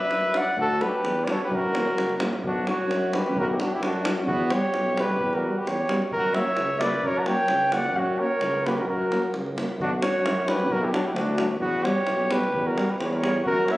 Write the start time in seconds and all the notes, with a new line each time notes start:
Already playing: B4 E5
0.10 F#2, davul high
0.34 F#3 D4 F#5, davul high
0.38 D5
0.56 D2 F#4, davul low
0.61 A4
0.70 davul high
0.81 F#3 D4 G4 B4, davul high
1.03 E2, davul high
1.24 D4 B4 D5, davul high
1.29 F#3 A4 C#5
1.43 G4 B4
1.48 F#2, davul low
1.54 F#4 A#4
1.71 E1 F#3 A#3, davul high
1.88 davul high
1.95 F#1, davul high
2.09 davul high
2.18 A#1 F#3, davul high
2.22 A#3
2.33 davul high
2.43 B1 D4 F#4, davul low
2.66 F#3 D4 F#4 C#5, davul high
2.87 F#2
2.91 davul high
3.13 F#3 D4 G4 B4, davul high
3.26 davul high
3.34 B1, davul low
3.39 F#4 A#4
3.49 E4 G4
3.58 F#3 D4 F#4, davul high
3.72 E4 G4
3.80 F#2 D4 F#4, davul high
4.04 F#3 D4, davul high
4.17 davul high
4.27 E2 B3 F#4, davul low
4.50 G3 B3 G4 C#5, davul high
4.74 B1, davul high
4.96 G3 B3, davul high
5.00 G4 B4
5.10 davul high
5.20 E2, davul low
5.33 F#4 A#4, davul high
5.42 B3
5.46 G3
5.58 G4 B4
5.65 E2 C#5, davul high
5.71 G4
5.88 F#2 G3 B3, davul high
6.02 davul high
6.11 F#2 A#4, davul low
6.17 F#4
6.34 F#3 A#3 C#5 E5, davul high
6.57 C#2, davul high
6.80 F#3 A#3 B4 D5, davul high
6.94 davul high
7.03 F#2 A#4 C#5, davul low
7.19 F#5 A#5
7.26 F#3 A#3 C#5 G5, davul high
7.48 C#2, davul high
7.72 F#3 A#3 D5 F#5, davul high
7.84 davul high
7.95 F#2 C#4 F#4, davul low
8.19 F#3 A#3 A#4 C#5
8.40 C#2, davul high
8.65 F#3 A#3 G4 B4, davul high
8.78 F#4 A#4, davul high
8.86 F#2 F#4 A#4, davul low
9.11 F#3 A#3, davul high
9.23 davul high
9.34 C#2, davul high
9.46 davul high
9.57 F#3 A#3, davul high
9.69 davul high
9.78 B1 F#4, davul low
9.82 D4
10.00 F#3 D4 C#5, davul high
10.06 F#4
10.24 F#2, davul high
10.47 F#3 D4 G4 B4, davul high
10.60 davul high
10.70 B1 F#4 A#4, davul low
10.82 E4 G4
10.93 F#3 D4 F#4, davul high
11.04 E4 G4
11.13 D2 D4 F#4, davul high
11.38 F#3 D4, davul high
11.51 davul high
11.60 E2 B3 F#4, davul low
11.84 G3 B3 G4 C#5, davul high
12.06 B1, davul high
12.30 G3 B3 G4 B4, davul high
12.43 davul high
12.53 E2, davul low
12.66 F#4 A#4
12.77 G3 B3, davul high
12.89 G4 B4, davul high
12.98 E2 G4 C#5, davul high
13.07 G4
13.11 A#4 B4, davul high
13.18 G3 C#5
13.23 B3, davul high
13.43 F#2 F#4 A#4, davul low
13.66 F#3 A#3 C#5, davul high
13.72 E5